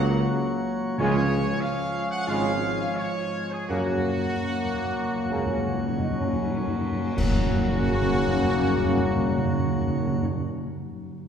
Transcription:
Already playing: C#2 F#3 A#3 F#4 C#5
0.98 C#2 C#3 F3 G#3 C#4 F4 G#4 C#5
1.60 F5
2.11 F#5
2.27 G#1 C#3 G#3 C#4 F4 F5
2.95 C#5
3.51 G#4
3.68 F#2 C#3 F#3 A#3 C#4 F#4
3.78 F#2
3.88 F#2
3.97 F#2
4.07 F#2
4.17 F#2
4.25 F#2
4.35 F#2
4.45 F#2 A#3
4.55 F#2
4.65 F#2
4.74 F#2
4.84 F#2
5.04 F#2
5.14 F#2
5.25 F#2
5.30 C#2 C#3 A#3 C#4
5.36 F#2
5.46 F#2
5.57 F#2
5.67 F#2
5.77 F#2
5.88 F#2
5.98 F#2 D#4
6.10 F#2
6.19 F#2 C#4
6.33 F#2
6.45 F#2
6.56 F#2
6.67 F#2
6.80 F#2
6.92 F#2
7.16 F#2 C#3 F#3 A#3 C#4 F#4 C#5, concert bass drum, crash
7.25 F#2
7.32 F#2
7.38 F#2
7.45 F#2
7.52 F#2
7.58 F#2
7.65 F#2
7.72 F#2
7.79 F#2
7.86 F#2
7.93 F#2
8.00 F#2
8.07 F#2
8.14 F#2
8.21 F#2
8.28 F#2
8.35 F#2
8.42 F#2
8.49 F#2
8.56 F#2
8.63 F#2
8.70 F#2
8.76 F#2
8.83 F#2
8.90 F#2
8.97 F#2
9.04 F#2
9.10 F#2
9.16 F#2
9.23 F#2
9.30 F#2
9.38 F#2
9.45 F#2
9.52 F#2
9.59 F#2
9.66 F#2
9.73 F#2
9.80 F#2
9.87 F#2
9.94 F#2
10.01 F#2
10.07 F#2
10.14 F#2
10.21 F#2

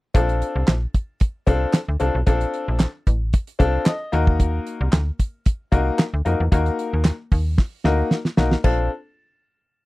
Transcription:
0.14 A#1 C4 D4 F4 A4, kick, closed hi-hat
0.29 closed hi-hat
0.42 closed hi-hat
0.56 C2
0.68 A#1, snare, clap, closed hi-hat
0.94 kick, closed hi-hat
1.20 kick, closed hi-hat
1.47 C2 C4 D4 F4 A4, kick, closed hi-hat
1.73 snare, clap, closed hi-hat
1.88 D2
2.00 C2 C4 D4 F4 A4, closed hi-hat
2.15 B1
2.27 A#1 C4 D4 F4 A4, kick, closed hi-hat
2.41 closed hi-hat
2.54 closed hi-hat
2.68 A#1
2.80 snare, clap, closed hi-hat
3.07 A1, kick, closed hi-hat
3.33 kick, closed hi-hat
3.47 closed hi-hat
3.59 C2 C4 D4 F4 A4, kick, closed hi-hat
3.86 D#5, snare, clap, closed hi-hat
4.12 D#2 A#3 D#4 F#4 A#4, closed hi-hat
4.27 kick
4.40 kick, closed hi-hat
4.67 closed hi-hat
4.81 C2
4.93 D2, snare, clap, closed hi-hat
5.19 kick, closed hi-hat
5.46 kick, closed hi-hat
5.72 C2 A#3 D#4 F#4 A#4, kick, closed hi-hat
5.99 snare, clap, closed hi-hat
6.14 D2
6.25 F2 A#3 D#4 F#4 A#4, closed hi-hat
6.40 E2
6.52 D#2 A#3 D#4 F#4 A#4, kick, closed hi-hat
6.66 closed hi-hat
6.79 closed hi-hat
6.93 D#2
7.05 snare, clap, closed hi-hat
7.32 D#2, kick, open hi-hat
7.58 kick, snare
7.84 D2 A#3 D#4 F#4 A#4, snare
8.11 snare
8.25 snare
8.37 B1 A#3 D#4 F#4 A#4, snare
8.52 snare
8.64 A#1 C4 D4 F4 A4, kick, crash

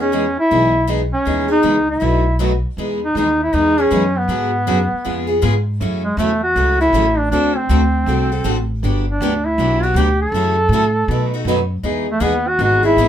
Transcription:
Already playing: E2
0.00 B3 C#4 D#4 G#4
0.12 E3 G#3 B3 D#4 G#4
0.40 E4
0.51 B1 E3 G#3 B3 D#4 G#4
0.87 E3 G#3 B3 D#4 G#4
1.13 C#4
1.25 D#2 E3 G#3 B3 D#4 G#4
1.48 B3 D#4 G#4
1.62 C#2 E3 G#3 B3 D#4 G#4
1.90 E4
2.00 B1 B2 F#3 A3 D#4 F#4 B4
2.39 B2 F#3 A3 D#4 F#4 B4
2.77 E2 E3 G#3 B3 D#4 G#4
3.05 D#4
3.15 D#2 E3 G#3 B3 D#4 G#4
3.43 E4
3.53 E2 E3 G#3 B3 D#4 G#4
3.78 B3 C#4 D#4 G#4
3.91 F#2 E3 G#3 B3 D#4 G#4
4.17 B3
4.28 G#2 D3 F#3 B3 F#4 G#4
4.67 F#2 D3 F#3 B3 F#4 G#4
4.93 muted upright bass stroke
5.05 F2 C#3 G#3 B3 F4 G#4
5.27 B3 F4 G#4
5.42 G#2 C#3 G#3 B3 F4 G#4
5.80 F#2 C#3 E3 F#3 A3 C#4 E4 F#4 A4
6.04 G#3
6.17 E2 C#3 E3 F#3 A3 C#4 E4 F#4 A4
6.44 F#4
6.56 C#2 C#3 E3 F#3 A3 C#4 E4 F#4 A4
6.81 A3 C#4 E4 F#4
6.93 A1 C#3 E3 F#3 A3 C#4 E4 F#4 A4
7.19 D4
7.31 D2 D3 A3 C4 D4 F#4 A4
7.56 C4
7.69 D2 D3 A3 C4 F#4 A4
8.06 C2 D3 A3 C4 F#4 A4
8.32 C4 F#4 A4
8.44 A1 D3 A3 C4 F#4 A4
8.83 G1 D3 F#3 B3 D4 G4
9.10 D4
9.21 D2 D3 F#3 B3 D4 G4
9.46 E4
9.58 B1 D3 F#3 B3 D4 G4
9.83 B3 D4 F#4 G4
9.94 D2 D3 F#3 B3 D4 G4
10.22 A4
10.32 F#2 C#3 E3 F#3 A3 C#4 E4 A4
10.36 F#4
10.69 A2 F#3 E4 A4
10.73 C#3 E3 A3 C#4 F#4
11.08 B2 F#3 A3 D#4 F#4 B4
11.34 A3 D#4 F#4
11.45 F#2 B2 F#3 A3 D#4 F#4 B4
11.83 E2 E3 G#3 B3 D#4 G#4
12.11 A3
12.20 D#2 E3 G#3 B3 D#4 G#4
12.48 F#4
12.59 G#1 E3 G#3 B3 D#4 G#4
12.63 F#4
12.83 B3 D#4 E4 G#4
12.97 A1 E3 G#3 B3 D#4 G#4

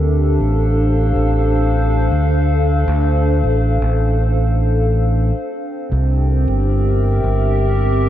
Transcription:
Already playing: D2 C4 D4 G4 A4
0.03 C5
0.17 F5
0.40 A1
1.16 A1
2.12 D2
2.88 D2
3.44 A1
3.82 A1
5.34 C4
5.87 G4
5.92 C2
6.02 A#4
6.48 G1
6.64 E5
7.24 G1

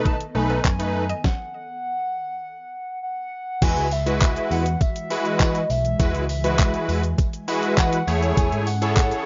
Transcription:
Already playing: B2 D#3 A3 B3 D#4 A4 B4
0.05 D#4 A5, kick, closed hi-hat
0.20 closed hi-hat
0.35 B1 A3 D#4 B4 G#5
0.50 B3, closed hi-hat
0.65 F#2, kick, clap, closed hi-hat
0.79 A3 D#4 B4, closed hi-hat
1.09 D#5, closed hi-hat
1.24 F#5, kick, snare
3.03 F#5
3.62 E2 E3 G#3 E4 F#4 B4 G#5, kick, closed hi-hat, crash, tambourine, shaker
3.77 C#2, closed hi-hat, shaker
3.91 E5, open hi-hat, tambourine, shaker
4.06 G#3 E4 F#4 B4, closed hi-hat, shaker
4.21 E5, kick, clap, closed hi-hat, tambourine, shaker
4.36 closed hi-hat, shaker
4.51 E2 F#5, open hi-hat, shaker
4.66 closed hi-hat, shaker
4.81 E5, kick, closed hi-hat, tambourine, shaker
4.96 closed hi-hat, shaker
5.10 G#3 E4 F#4 B4, open hi-hat, tambourine, shaker
5.25 D#5, closed hi-hat, shaker
5.40 E3, kick, clap, closed hi-hat, tambourine, shaker
5.55 closed hi-hat, shaker
5.70 B1 E5, open hi-hat, tambourine, shaker
5.85 closed hi-hat, shaker
5.99 E2 G#3 E4 F#4 B4 G#5, kick, closed hi-hat, tambourine, shaker
6.14 C#2, closed hi-hat, shaker
6.29 E5, open hi-hat, tambourine, shaker
6.44 G#3 E4 F#4 B4, closed hi-hat, shaker
6.59 kick, clap, closed hi-hat, tambourine, shaker
6.74 closed hi-hat, shaker
6.89 E2, open hi-hat, tambourine, shaker
7.03 closed hi-hat, shaker
7.18 kick, closed hi-hat, tambourine, shaker
7.33 closed hi-hat, shaker
7.48 G#3 E4 F#4 B4, open hi-hat, tambourine, shaker
7.63 closed hi-hat, shaker
7.78 E3 F#5, kick, clap, closed hi-hat, tambourine, shaker
7.93 closed hi-hat, shaker
8.07 E2 C#3 A3 C#4 E4 G#4 C#5, open hi-hat, tambourine, shaker
8.23 closed hi-hat, shaker
8.37 E2 G#5, kick, closed hi-hat, tambourine, shaker
8.52 G#2, closed hi-hat, shaker
8.67 F#5, open hi-hat, tambourine, shaker
8.82 E4 G#4 A4 C#5, closed hi-hat, shaker
8.96 kick, clap, closed hi-hat, tambourine, shaker
9.11 closed hi-hat, shaker

